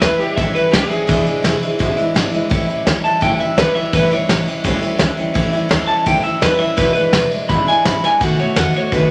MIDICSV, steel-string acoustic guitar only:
0, 0, Header, 1, 2, 480
1, 0, Start_track
1, 0, Tempo, 356083
1, 1468, Time_signature, 4, 2, 24, 8
1, 12276, End_track
2, 0, Start_track
2, 0, Title_t, "Steel-string acoustic guitar"
2, 0, Program_c, 0, 25
2, 4, Note_on_c, 0, 52, 66
2, 23, Note_on_c, 0, 55, 66
2, 30, Note_on_c, 0, 61, 62
2, 52, Note_on_c, 0, 64, 69
2, 240, Note_off_c, 0, 64, 0
2, 255, Note_off_c, 0, 52, 0
2, 256, Note_on_c, 0, 64, 48
2, 259, Note_off_c, 0, 61, 0
2, 265, Note_off_c, 0, 55, 0
2, 276, Note_on_c, 0, 61, 44
2, 294, Note_on_c, 0, 55, 41
2, 502, Note_off_c, 0, 64, 0
2, 507, Note_on_c, 0, 45, 81
2, 510, Note_off_c, 0, 55, 0
2, 511, Note_off_c, 0, 61, 0
2, 513, Note_on_c, 0, 52, 86
2, 525, Note_on_c, 0, 61, 88
2, 526, Note_on_c, 0, 55, 90
2, 526, Note_on_c, 0, 64, 95
2, 737, Note_off_c, 0, 64, 0
2, 747, Note_off_c, 0, 45, 0
2, 750, Note_off_c, 0, 52, 0
2, 750, Note_off_c, 0, 61, 0
2, 754, Note_on_c, 0, 64, 63
2, 757, Note_off_c, 0, 55, 0
2, 766, Note_on_c, 0, 61, 49
2, 779, Note_on_c, 0, 55, 45
2, 954, Note_off_c, 0, 55, 0
2, 956, Note_on_c, 0, 52, 60
2, 971, Note_on_c, 0, 55, 75
2, 977, Note_off_c, 0, 61, 0
2, 983, Note_off_c, 0, 64, 0
2, 994, Note_on_c, 0, 61, 74
2, 1000, Note_on_c, 0, 64, 66
2, 1176, Note_off_c, 0, 64, 0
2, 1192, Note_on_c, 0, 64, 64
2, 1205, Note_off_c, 0, 61, 0
2, 1212, Note_off_c, 0, 52, 0
2, 1219, Note_off_c, 0, 55, 0
2, 1221, Note_on_c, 0, 61, 59
2, 1241, Note_on_c, 0, 55, 46
2, 1441, Note_on_c, 0, 40, 89
2, 1450, Note_off_c, 0, 64, 0
2, 1450, Note_on_c, 0, 52, 83
2, 1453, Note_on_c, 0, 47, 84
2, 1457, Note_off_c, 0, 55, 0
2, 1462, Note_off_c, 0, 61, 0
2, 1462, Note_on_c, 0, 56, 84
2, 1467, Note_on_c, 0, 62, 90
2, 1472, Note_on_c, 0, 64, 90
2, 1662, Note_off_c, 0, 64, 0
2, 1678, Note_on_c, 0, 64, 50
2, 1681, Note_off_c, 0, 62, 0
2, 1689, Note_off_c, 0, 56, 0
2, 1694, Note_off_c, 0, 40, 0
2, 1697, Note_on_c, 0, 62, 53
2, 1699, Note_off_c, 0, 52, 0
2, 1700, Note_off_c, 0, 47, 0
2, 1705, Note_on_c, 0, 56, 50
2, 1718, Note_on_c, 0, 52, 44
2, 1905, Note_off_c, 0, 52, 0
2, 1922, Note_on_c, 0, 52, 72
2, 1923, Note_off_c, 0, 56, 0
2, 1933, Note_off_c, 0, 64, 0
2, 1939, Note_on_c, 0, 56, 74
2, 1942, Note_off_c, 0, 62, 0
2, 1956, Note_on_c, 0, 62, 71
2, 1963, Note_on_c, 0, 64, 75
2, 2147, Note_off_c, 0, 64, 0
2, 2161, Note_off_c, 0, 62, 0
2, 2164, Note_on_c, 0, 64, 55
2, 2172, Note_off_c, 0, 56, 0
2, 2175, Note_off_c, 0, 52, 0
2, 2177, Note_on_c, 0, 62, 52
2, 2189, Note_on_c, 0, 56, 51
2, 2195, Note_on_c, 0, 52, 53
2, 2407, Note_off_c, 0, 52, 0
2, 2407, Note_off_c, 0, 56, 0
2, 2412, Note_on_c, 0, 40, 101
2, 2416, Note_off_c, 0, 62, 0
2, 2416, Note_off_c, 0, 64, 0
2, 2416, Note_on_c, 0, 47, 93
2, 2423, Note_on_c, 0, 52, 93
2, 2423, Note_on_c, 0, 56, 97
2, 2432, Note_on_c, 0, 62, 98
2, 2433, Note_on_c, 0, 64, 102
2, 2637, Note_off_c, 0, 64, 0
2, 2653, Note_on_c, 0, 64, 66
2, 2657, Note_off_c, 0, 62, 0
2, 2660, Note_off_c, 0, 40, 0
2, 2662, Note_off_c, 0, 47, 0
2, 2666, Note_off_c, 0, 52, 0
2, 2666, Note_off_c, 0, 56, 0
2, 2673, Note_on_c, 0, 62, 65
2, 2689, Note_on_c, 0, 56, 58
2, 2702, Note_on_c, 0, 52, 54
2, 2870, Note_off_c, 0, 52, 0
2, 2886, Note_off_c, 0, 56, 0
2, 2886, Note_on_c, 0, 52, 76
2, 2901, Note_off_c, 0, 64, 0
2, 2902, Note_on_c, 0, 56, 74
2, 2903, Note_off_c, 0, 62, 0
2, 2919, Note_on_c, 0, 62, 77
2, 2923, Note_on_c, 0, 64, 80
2, 3110, Note_off_c, 0, 64, 0
2, 3118, Note_off_c, 0, 62, 0
2, 3127, Note_on_c, 0, 64, 65
2, 3132, Note_off_c, 0, 56, 0
2, 3134, Note_on_c, 0, 62, 59
2, 3137, Note_off_c, 0, 52, 0
2, 3148, Note_on_c, 0, 56, 59
2, 3163, Note_on_c, 0, 52, 57
2, 3350, Note_off_c, 0, 52, 0
2, 3365, Note_on_c, 0, 45, 86
2, 3366, Note_on_c, 0, 52, 84
2, 3371, Note_off_c, 0, 56, 0
2, 3371, Note_off_c, 0, 64, 0
2, 3377, Note_off_c, 0, 62, 0
2, 3377, Note_on_c, 0, 55, 101
2, 3383, Note_on_c, 0, 61, 92
2, 3387, Note_on_c, 0, 64, 100
2, 3581, Note_off_c, 0, 64, 0
2, 3597, Note_on_c, 0, 64, 56
2, 3607, Note_off_c, 0, 61, 0
2, 3617, Note_off_c, 0, 45, 0
2, 3617, Note_off_c, 0, 52, 0
2, 3623, Note_off_c, 0, 55, 0
2, 3623, Note_on_c, 0, 61, 51
2, 3640, Note_on_c, 0, 55, 52
2, 3853, Note_off_c, 0, 64, 0
2, 3855, Note_off_c, 0, 55, 0
2, 3861, Note_on_c, 0, 52, 66
2, 3866, Note_off_c, 0, 61, 0
2, 3871, Note_on_c, 0, 55, 63
2, 3880, Note_on_c, 0, 61, 78
2, 3894, Note_on_c, 0, 64, 75
2, 4077, Note_off_c, 0, 64, 0
2, 4090, Note_off_c, 0, 61, 0
2, 4093, Note_on_c, 0, 64, 48
2, 4105, Note_off_c, 0, 52, 0
2, 4106, Note_on_c, 0, 61, 41
2, 4110, Note_off_c, 0, 55, 0
2, 4124, Note_on_c, 0, 55, 48
2, 4316, Note_off_c, 0, 55, 0
2, 4321, Note_off_c, 0, 61, 0
2, 4321, Note_on_c, 0, 45, 85
2, 4327, Note_on_c, 0, 52, 90
2, 4332, Note_on_c, 0, 55, 86
2, 4337, Note_off_c, 0, 64, 0
2, 4337, Note_on_c, 0, 61, 89
2, 4353, Note_on_c, 0, 64, 80
2, 4547, Note_off_c, 0, 64, 0
2, 4563, Note_on_c, 0, 64, 58
2, 4567, Note_off_c, 0, 61, 0
2, 4575, Note_off_c, 0, 45, 0
2, 4578, Note_off_c, 0, 52, 0
2, 4581, Note_off_c, 0, 55, 0
2, 4583, Note_on_c, 0, 61, 51
2, 4595, Note_on_c, 0, 55, 48
2, 4810, Note_off_c, 0, 55, 0
2, 4812, Note_on_c, 0, 52, 65
2, 4816, Note_off_c, 0, 64, 0
2, 4820, Note_off_c, 0, 61, 0
2, 4827, Note_on_c, 0, 55, 64
2, 4836, Note_on_c, 0, 61, 69
2, 4853, Note_on_c, 0, 64, 71
2, 5032, Note_off_c, 0, 64, 0
2, 5048, Note_on_c, 0, 64, 52
2, 5056, Note_off_c, 0, 61, 0
2, 5061, Note_off_c, 0, 52, 0
2, 5068, Note_off_c, 0, 55, 0
2, 5072, Note_on_c, 0, 61, 59
2, 5092, Note_on_c, 0, 55, 45
2, 5290, Note_on_c, 0, 45, 74
2, 5295, Note_off_c, 0, 55, 0
2, 5299, Note_off_c, 0, 64, 0
2, 5300, Note_on_c, 0, 52, 90
2, 5307, Note_off_c, 0, 61, 0
2, 5311, Note_on_c, 0, 55, 86
2, 5322, Note_on_c, 0, 64, 95
2, 5323, Note_on_c, 0, 61, 95
2, 5513, Note_off_c, 0, 64, 0
2, 5529, Note_on_c, 0, 64, 54
2, 5535, Note_off_c, 0, 61, 0
2, 5540, Note_off_c, 0, 45, 0
2, 5544, Note_off_c, 0, 52, 0
2, 5550, Note_off_c, 0, 55, 0
2, 5551, Note_on_c, 0, 61, 44
2, 5579, Note_on_c, 0, 55, 45
2, 5763, Note_off_c, 0, 55, 0
2, 5779, Note_off_c, 0, 64, 0
2, 5779, Note_on_c, 0, 52, 62
2, 5779, Note_on_c, 0, 55, 64
2, 5785, Note_off_c, 0, 61, 0
2, 5801, Note_on_c, 0, 61, 65
2, 5802, Note_on_c, 0, 64, 63
2, 5992, Note_off_c, 0, 64, 0
2, 6008, Note_on_c, 0, 64, 45
2, 6011, Note_off_c, 0, 61, 0
2, 6024, Note_off_c, 0, 52, 0
2, 6024, Note_off_c, 0, 55, 0
2, 6028, Note_on_c, 0, 61, 50
2, 6045, Note_on_c, 0, 55, 42
2, 6244, Note_off_c, 0, 55, 0
2, 6251, Note_off_c, 0, 61, 0
2, 6252, Note_on_c, 0, 45, 96
2, 6254, Note_on_c, 0, 52, 94
2, 6258, Note_off_c, 0, 64, 0
2, 6261, Note_on_c, 0, 55, 95
2, 6268, Note_on_c, 0, 61, 112
2, 6275, Note_on_c, 0, 64, 105
2, 6464, Note_off_c, 0, 64, 0
2, 6480, Note_on_c, 0, 64, 72
2, 6488, Note_off_c, 0, 61, 0
2, 6501, Note_off_c, 0, 45, 0
2, 6502, Note_off_c, 0, 52, 0
2, 6504, Note_on_c, 0, 61, 62
2, 6505, Note_off_c, 0, 55, 0
2, 6521, Note_on_c, 0, 55, 56
2, 6720, Note_on_c, 0, 52, 79
2, 6721, Note_off_c, 0, 55, 0
2, 6733, Note_off_c, 0, 61, 0
2, 6735, Note_off_c, 0, 64, 0
2, 6737, Note_on_c, 0, 55, 78
2, 6749, Note_on_c, 0, 61, 72
2, 6760, Note_on_c, 0, 64, 76
2, 6951, Note_off_c, 0, 64, 0
2, 6968, Note_on_c, 0, 64, 59
2, 6974, Note_off_c, 0, 52, 0
2, 6980, Note_off_c, 0, 61, 0
2, 6983, Note_off_c, 0, 55, 0
2, 6997, Note_on_c, 0, 61, 63
2, 7014, Note_on_c, 0, 55, 53
2, 7195, Note_off_c, 0, 55, 0
2, 7197, Note_on_c, 0, 45, 98
2, 7205, Note_off_c, 0, 61, 0
2, 7210, Note_on_c, 0, 52, 96
2, 7211, Note_on_c, 0, 55, 99
2, 7212, Note_off_c, 0, 64, 0
2, 7221, Note_on_c, 0, 61, 102
2, 7228, Note_on_c, 0, 64, 102
2, 7421, Note_off_c, 0, 64, 0
2, 7431, Note_off_c, 0, 61, 0
2, 7437, Note_on_c, 0, 64, 65
2, 7447, Note_on_c, 0, 61, 54
2, 7453, Note_off_c, 0, 45, 0
2, 7453, Note_off_c, 0, 55, 0
2, 7459, Note_off_c, 0, 52, 0
2, 7469, Note_on_c, 0, 55, 49
2, 7671, Note_off_c, 0, 55, 0
2, 7671, Note_on_c, 0, 52, 80
2, 7678, Note_off_c, 0, 61, 0
2, 7687, Note_on_c, 0, 55, 66
2, 7693, Note_off_c, 0, 64, 0
2, 7694, Note_on_c, 0, 61, 75
2, 7710, Note_on_c, 0, 64, 74
2, 7897, Note_off_c, 0, 64, 0
2, 7913, Note_on_c, 0, 64, 55
2, 7915, Note_off_c, 0, 61, 0
2, 7930, Note_off_c, 0, 52, 0
2, 7931, Note_off_c, 0, 55, 0
2, 7931, Note_on_c, 0, 61, 50
2, 7948, Note_on_c, 0, 55, 40
2, 8159, Note_off_c, 0, 55, 0
2, 8167, Note_off_c, 0, 61, 0
2, 8167, Note_on_c, 0, 45, 86
2, 8171, Note_off_c, 0, 64, 0
2, 8175, Note_on_c, 0, 55, 80
2, 8176, Note_on_c, 0, 52, 72
2, 8183, Note_on_c, 0, 61, 82
2, 8197, Note_on_c, 0, 64, 98
2, 8379, Note_off_c, 0, 64, 0
2, 8395, Note_off_c, 0, 61, 0
2, 8395, Note_on_c, 0, 64, 59
2, 8411, Note_on_c, 0, 61, 60
2, 8417, Note_off_c, 0, 55, 0
2, 8418, Note_off_c, 0, 45, 0
2, 8422, Note_off_c, 0, 52, 0
2, 8433, Note_on_c, 0, 55, 49
2, 8646, Note_on_c, 0, 52, 68
2, 8650, Note_off_c, 0, 55, 0
2, 8651, Note_off_c, 0, 61, 0
2, 8652, Note_off_c, 0, 64, 0
2, 8666, Note_on_c, 0, 55, 72
2, 8667, Note_on_c, 0, 61, 67
2, 8686, Note_on_c, 0, 64, 76
2, 8865, Note_off_c, 0, 64, 0
2, 8881, Note_on_c, 0, 64, 59
2, 8885, Note_off_c, 0, 61, 0
2, 8897, Note_off_c, 0, 52, 0
2, 8901, Note_on_c, 0, 61, 48
2, 8904, Note_off_c, 0, 55, 0
2, 8921, Note_on_c, 0, 55, 44
2, 9121, Note_on_c, 0, 40, 90
2, 9129, Note_on_c, 0, 47, 98
2, 9134, Note_on_c, 0, 52, 87
2, 9135, Note_off_c, 0, 64, 0
2, 9137, Note_off_c, 0, 55, 0
2, 9137, Note_off_c, 0, 61, 0
2, 9143, Note_on_c, 0, 56, 95
2, 9143, Note_on_c, 0, 62, 98
2, 9154, Note_on_c, 0, 64, 90
2, 9352, Note_off_c, 0, 64, 0
2, 9364, Note_off_c, 0, 62, 0
2, 9368, Note_on_c, 0, 64, 56
2, 9375, Note_off_c, 0, 40, 0
2, 9378, Note_off_c, 0, 56, 0
2, 9379, Note_off_c, 0, 47, 0
2, 9380, Note_on_c, 0, 62, 47
2, 9381, Note_off_c, 0, 52, 0
2, 9395, Note_on_c, 0, 56, 50
2, 9406, Note_on_c, 0, 52, 41
2, 9605, Note_off_c, 0, 52, 0
2, 9618, Note_off_c, 0, 64, 0
2, 9621, Note_on_c, 0, 52, 60
2, 9622, Note_off_c, 0, 56, 0
2, 9624, Note_off_c, 0, 62, 0
2, 9638, Note_on_c, 0, 56, 59
2, 9658, Note_on_c, 0, 62, 65
2, 9660, Note_on_c, 0, 64, 68
2, 9838, Note_off_c, 0, 64, 0
2, 9851, Note_off_c, 0, 62, 0
2, 9855, Note_on_c, 0, 64, 50
2, 9865, Note_off_c, 0, 52, 0
2, 9866, Note_off_c, 0, 56, 0
2, 9868, Note_on_c, 0, 62, 46
2, 9882, Note_on_c, 0, 56, 45
2, 9889, Note_on_c, 0, 52, 43
2, 10087, Note_off_c, 0, 52, 0
2, 10092, Note_off_c, 0, 62, 0
2, 10094, Note_on_c, 0, 40, 78
2, 10096, Note_off_c, 0, 56, 0
2, 10100, Note_on_c, 0, 47, 82
2, 10102, Note_off_c, 0, 64, 0
2, 10103, Note_on_c, 0, 52, 86
2, 10108, Note_on_c, 0, 62, 94
2, 10112, Note_on_c, 0, 56, 82
2, 10123, Note_on_c, 0, 64, 90
2, 10319, Note_off_c, 0, 64, 0
2, 10335, Note_on_c, 0, 64, 64
2, 10338, Note_off_c, 0, 62, 0
2, 10341, Note_off_c, 0, 40, 0
2, 10344, Note_off_c, 0, 47, 0
2, 10345, Note_off_c, 0, 56, 0
2, 10346, Note_off_c, 0, 52, 0
2, 10354, Note_on_c, 0, 62, 52
2, 10361, Note_on_c, 0, 56, 60
2, 10375, Note_on_c, 0, 52, 49
2, 10572, Note_off_c, 0, 52, 0
2, 10582, Note_off_c, 0, 56, 0
2, 10582, Note_off_c, 0, 64, 0
2, 10588, Note_on_c, 0, 52, 63
2, 10591, Note_off_c, 0, 62, 0
2, 10598, Note_on_c, 0, 56, 68
2, 10613, Note_on_c, 0, 62, 64
2, 10629, Note_on_c, 0, 64, 65
2, 10798, Note_off_c, 0, 64, 0
2, 10814, Note_on_c, 0, 64, 58
2, 10815, Note_off_c, 0, 62, 0
2, 10827, Note_off_c, 0, 56, 0
2, 10828, Note_off_c, 0, 52, 0
2, 10831, Note_on_c, 0, 62, 49
2, 10843, Note_on_c, 0, 56, 53
2, 10859, Note_on_c, 0, 52, 43
2, 11061, Note_off_c, 0, 64, 0
2, 11062, Note_on_c, 0, 47, 79
2, 11069, Note_off_c, 0, 52, 0
2, 11070, Note_off_c, 0, 62, 0
2, 11075, Note_on_c, 0, 51, 77
2, 11076, Note_off_c, 0, 56, 0
2, 11082, Note_on_c, 0, 57, 89
2, 11084, Note_on_c, 0, 59, 96
2, 11084, Note_on_c, 0, 66, 84
2, 11270, Note_off_c, 0, 66, 0
2, 11286, Note_on_c, 0, 66, 61
2, 11299, Note_off_c, 0, 59, 0
2, 11305, Note_off_c, 0, 47, 0
2, 11305, Note_off_c, 0, 57, 0
2, 11311, Note_off_c, 0, 51, 0
2, 11316, Note_on_c, 0, 59, 50
2, 11321, Note_on_c, 0, 57, 42
2, 11530, Note_off_c, 0, 57, 0
2, 11533, Note_on_c, 0, 51, 62
2, 11534, Note_off_c, 0, 59, 0
2, 11537, Note_off_c, 0, 66, 0
2, 11546, Note_on_c, 0, 57, 66
2, 11550, Note_on_c, 0, 59, 63
2, 11568, Note_on_c, 0, 66, 63
2, 11767, Note_off_c, 0, 66, 0
2, 11781, Note_off_c, 0, 51, 0
2, 11783, Note_on_c, 0, 66, 53
2, 11787, Note_off_c, 0, 57, 0
2, 11789, Note_off_c, 0, 59, 0
2, 11812, Note_on_c, 0, 59, 47
2, 11823, Note_on_c, 0, 57, 38
2, 12026, Note_off_c, 0, 66, 0
2, 12031, Note_off_c, 0, 57, 0
2, 12035, Note_off_c, 0, 59, 0
2, 12038, Note_on_c, 0, 47, 78
2, 12039, Note_on_c, 0, 51, 91
2, 12047, Note_on_c, 0, 57, 85
2, 12051, Note_on_c, 0, 59, 88
2, 12057, Note_on_c, 0, 66, 90
2, 12236, Note_off_c, 0, 66, 0
2, 12254, Note_off_c, 0, 59, 0
2, 12273, Note_off_c, 0, 47, 0
2, 12274, Note_off_c, 0, 51, 0
2, 12276, Note_off_c, 0, 57, 0
2, 12276, End_track
0, 0, End_of_file